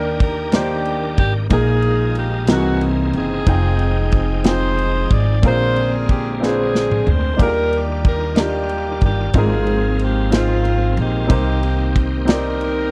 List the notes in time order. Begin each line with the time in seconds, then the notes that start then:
Already playing: D#2 D#3 A#3 D4 G4 A#4
0.20 A#4, kick, ride
0.52 D#3 A#3 D4 G4 C5, snare, ride
0.85 ride
1.18 G#1 G4, kick, ride
1.50 A#1 A#2 F3 G#3 A#3 D4 D#4 F4 G#4 A#4, kick, ride
1.57 D#4
1.82 ride
2.15 G4, ride
2.47 C2 C3 E3 A#3 C4 D#4 G#4, snare, ride
2.51 A#3 D#4 F#4 A#4
2.81 ride
3.13 F#1 C4 D#4 G#4, ride
3.46 F1 F3 G#3 C4 D#4 F4 G#4 G5, kick, ride
3.79 ride
4.12 kick, ride
4.44 C4 D#4 F4 G#4 C5 G5, snare, ride
4.78 ride
5.10 G#1 D5, kick, ride
5.42 A#1 A#2 D3 G#3 A#3 C4 C#4 F4 G#4 A#4, kick, ride
5.46 D4 F4 G#4 C5
5.76 ride
6.09 G4, kick, ride
6.40 C4 D4 F4 G#4 B4, snare
6.44 C4 D4 G#4
6.49 C5
6.75 snare
6.91 mid tom
7.07 D2 C5, floor tom
7.37 D#2 D#3 G3 A#3 D4 F4 G4 G#4, kick, ride
7.41 D4 G4 A#4
7.47 A#4
7.73 ride
8.05 A#4, kick, ride
8.36 D#3 A#3 D4 F4 G4 A#4, snare, ride
8.40 D4
8.69 ride
9.01 G1 G4, kick, ride
9.34 G#1 G#2 F3 G#3 A#3 C4 D#4 F4 G#4 A#4, kick, ride
9.38 C4 F4 G#4
9.67 ride
9.99 G4, ride
10.31 C4 D#4 F4 G#4 C5, snare, ride
10.35 A#3 C4 F4
10.65 ride
10.97 A#1 A#3 D#4 G4, ride
11.27 C2 C3 D#3 A#3 C4 D#4 G4 A#4 C5, kick, ride
11.63 ride
11.96 kick, ride
12.25 C4 D#4 G4 A#4, snare, ride
12.29 D#4 G4 A#4 D5
12.61 ride